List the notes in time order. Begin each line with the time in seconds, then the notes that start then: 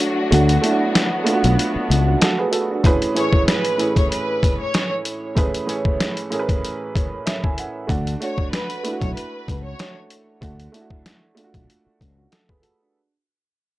Already playing: F#3 A3 D4 E4 F#4
0.00 closed hi-hat
0.31 D2 A3 B3 D4 F#4, closed hi-hat
0.49 closed hi-hat
0.62 A3 D4 E4, closed hi-hat
0.71 F#4
0.95 snare, closed hi-hat
1.24 A3 D4 F4, closed hi-hat
1.33 F#4
1.44 B1, closed hi-hat
1.59 closed hi-hat
1.75 muted fretless electric bass stroke
1.90 C#2, closed hi-hat
2.07 D4 F#4
2.21 F#4 A4, snare, closed hi-hat
2.38 G#4 B4
2.52 F#4 A4, closed hi-hat
2.71 D4 F#4
2.84 A2 E3 C#4 G#4 B4, kick, closed hi-hat
3.02 closed hi-hat
3.15 A2 E3 C#4 G#4 B4 C#5, closed hi-hat
3.24 C#5
3.33 kick
3.48 B4, snare, closed hi-hat
3.65 closed hi-hat
3.78 A2 E3 C#4 G#4 C#5, closed hi-hat
3.96 C#5, kick, closed hi-hat
4.10 B4, closed hi-hat
4.43 kick, closed hi-hat
4.60 C#5
4.74 snare, closed hi-hat
5.05 closed hi-hat
5.35 A2 E3 C#4 G#4 B4, kick, closed hi-hat
5.54 closed hi-hat
5.67 A2 E3 C#4 G#4 C#5, closed hi-hat
5.85 kick
6.00 snare, closed hi-hat
6.17 closed hi-hat
6.30 A2 E3 C#4 G#4 A#4, closed hi-hat
6.39 B4
6.49 kick, closed hi-hat
6.65 closed hi-hat
6.95 C#5, kick, closed hi-hat
7.26 E5, snare, closed hi-hat
7.44 G#5, kick
7.58 F#5, closed hi-hat
7.87 D2 A3 D4 F#4, kick, closed hi-hat
8.07 closed hi-hat
8.20 A3 D4 F#4 C#5, closed hi-hat
8.38 kick
8.52 B4, snare, closed hi-hat
8.70 closed hi-hat
8.83 A3 D4 E4, closed hi-hat
8.93 F#4
9.02 B1 C#5, kick, closed hi-hat
9.15 B4, closed hi-hat
9.48 C#2, kick, closed hi-hat
9.64 C#5
9.79 snare, closed hi-hat
10.10 closed hi-hat
10.41 D2 A3 D4 F#4, kick, closed hi-hat
10.60 closed hi-hat
10.72 A3 D4 E4, closed hi-hat
10.81 F#4
10.90 kick
11.06 snare, closed hi-hat
11.35 A3 D4 F4, closed hi-hat
11.44 F#4
11.54 B1, kick, closed hi-hat
11.70 closed hi-hat
11.86 muted fretless electric bass stroke
12.01 C#2, kick, closed hi-hat
12.18 D4 F#4
12.32 F#4 A4, snare, closed hi-hat
12.49 G#4 B4, kick
12.62 F#4 A4, closed hi-hat
12.82 D4 F#4